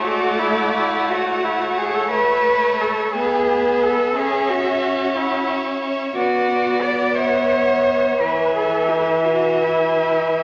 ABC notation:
X:1
M:6/8
L:1/16
Q:3/8=58
K:Emix
V:1 name="Violin"
f12 | e6 e6 | c6 f2 e2 e2 | f6 f6 |
g6 g6 |]
V:2 name="Violin"
d6 c6- | c6 B6 | e6 c6 | d6 e6 |
e12 |]
V:3 name="Cello"
F2 E2 E2 F2 E F G A | B4 A2 G4 A2 | G2 F4 E2 z4 | F4 d2 c6 |
B2 A2 E2 F2 E4 |]
V:4 name="Viola"
A,12 | A,6 B,6 | C12 | B,12 |
E,12 |]